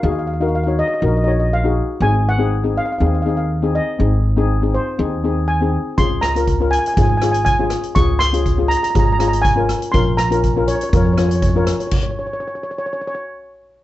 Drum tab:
CC |----------------|----------------|----------------|----------------|
HH |----------------|----------------|----------------|x-xxx-xxx-xxx-xx|
SD |----------------|----------------|----------------|--r-------r---r-|
BD |----------------|----------------|----------------|o---o---o---o---|

CC |----------------|----------------|x---------------|
HH |x-xxx-xxx-xxx-xx|x-xxx-xxx-xxx-xx|----------------|
SD |--r-------r---r-|--r-------r---r-|----------------|
BD |o---o---o---o---|o---o---o---o---|o---------------|